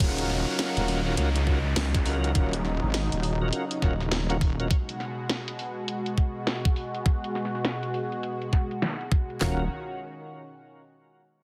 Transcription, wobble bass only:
0, 0, Header, 1, 2, 480
1, 0, Start_track
1, 0, Time_signature, 4, 2, 24, 8
1, 0, Key_signature, -6, "minor"
1, 0, Tempo, 588235
1, 9329, End_track
2, 0, Start_track
2, 0, Title_t, "Wobble bass"
2, 0, Program_c, 0, 39
2, 0, Note_on_c, 0, 27, 93
2, 364, Note_off_c, 0, 27, 0
2, 627, Note_on_c, 0, 27, 99
2, 944, Note_off_c, 0, 27, 0
2, 958, Note_on_c, 0, 37, 96
2, 1424, Note_off_c, 0, 37, 0
2, 1437, Note_on_c, 0, 37, 98
2, 1903, Note_off_c, 0, 37, 0
2, 1919, Note_on_c, 0, 27, 98
2, 2284, Note_off_c, 0, 27, 0
2, 2309, Note_on_c, 0, 32, 98
2, 2525, Note_off_c, 0, 32, 0
2, 2551, Note_on_c, 0, 27, 94
2, 2866, Note_off_c, 0, 27, 0
2, 3119, Note_on_c, 0, 27, 94
2, 3825, Note_off_c, 0, 27, 0
2, 7678, Note_on_c, 0, 27, 96
2, 7902, Note_off_c, 0, 27, 0
2, 9329, End_track
0, 0, End_of_file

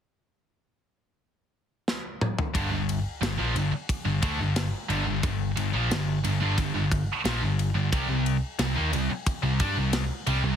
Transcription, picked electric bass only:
0, 0, Header, 1, 3, 480
1, 0, Start_track
1, 0, Key_signature, -2, "minor"
1, 0, Tempo, 672646
1, 1818, Time_signature, 4, 2, 24, 8
1, 7536, End_track
2, 0, Start_track
2, 0, Title_t, "Picked electric bass"
2, 0, Program_c, 0, 34
2, 1821, Note_on_c, 0, 31, 82
2, 1931, Note_off_c, 0, 31, 0
2, 1936, Note_on_c, 0, 31, 78
2, 2160, Note_off_c, 0, 31, 0
2, 2293, Note_on_c, 0, 31, 79
2, 2407, Note_off_c, 0, 31, 0
2, 2414, Note_on_c, 0, 34, 89
2, 2526, Note_off_c, 0, 34, 0
2, 2530, Note_on_c, 0, 31, 87
2, 2645, Note_off_c, 0, 31, 0
2, 2891, Note_on_c, 0, 31, 78
2, 3006, Note_off_c, 0, 31, 0
2, 3017, Note_on_c, 0, 38, 93
2, 3129, Note_off_c, 0, 38, 0
2, 3133, Note_on_c, 0, 31, 75
2, 3359, Note_off_c, 0, 31, 0
2, 3493, Note_on_c, 0, 31, 100
2, 3604, Note_off_c, 0, 31, 0
2, 3608, Note_on_c, 0, 31, 87
2, 3724, Note_off_c, 0, 31, 0
2, 3737, Note_on_c, 0, 31, 75
2, 3960, Note_off_c, 0, 31, 0
2, 3973, Note_on_c, 0, 31, 76
2, 4087, Note_off_c, 0, 31, 0
2, 4092, Note_on_c, 0, 34, 102
2, 4206, Note_off_c, 0, 34, 0
2, 4212, Note_on_c, 0, 31, 72
2, 4438, Note_off_c, 0, 31, 0
2, 4455, Note_on_c, 0, 31, 84
2, 4567, Note_off_c, 0, 31, 0
2, 4578, Note_on_c, 0, 31, 88
2, 4689, Note_off_c, 0, 31, 0
2, 4697, Note_on_c, 0, 31, 86
2, 4809, Note_off_c, 0, 31, 0
2, 4813, Note_on_c, 0, 31, 82
2, 5038, Note_off_c, 0, 31, 0
2, 5171, Note_on_c, 0, 34, 103
2, 5285, Note_off_c, 0, 34, 0
2, 5289, Note_on_c, 0, 31, 74
2, 5515, Note_off_c, 0, 31, 0
2, 5529, Note_on_c, 0, 31, 78
2, 5644, Note_off_c, 0, 31, 0
2, 5657, Note_on_c, 0, 36, 90
2, 5763, Note_off_c, 0, 36, 0
2, 5767, Note_on_c, 0, 36, 77
2, 5994, Note_off_c, 0, 36, 0
2, 6129, Note_on_c, 0, 36, 72
2, 6243, Note_off_c, 0, 36, 0
2, 6247, Note_on_c, 0, 39, 84
2, 6362, Note_off_c, 0, 39, 0
2, 6365, Note_on_c, 0, 36, 89
2, 6481, Note_off_c, 0, 36, 0
2, 6729, Note_on_c, 0, 36, 80
2, 6843, Note_off_c, 0, 36, 0
2, 6851, Note_on_c, 0, 43, 100
2, 6964, Note_off_c, 0, 43, 0
2, 6969, Note_on_c, 0, 36, 76
2, 7194, Note_off_c, 0, 36, 0
2, 7330, Note_on_c, 0, 36, 103
2, 7443, Note_off_c, 0, 36, 0
2, 7447, Note_on_c, 0, 36, 84
2, 7536, Note_off_c, 0, 36, 0
2, 7536, End_track
3, 0, Start_track
3, 0, Title_t, "Muted picked electric bass strokes"
3, 2655, Note_on_c, 9, 29, 41
3, 2727, Note_off_c, 9, 29, 0
3, 6492, Note_on_c, 9, 29, 37
3, 6563, Note_off_c, 9, 29, 0
3, 7536, End_track
0, 0, End_of_file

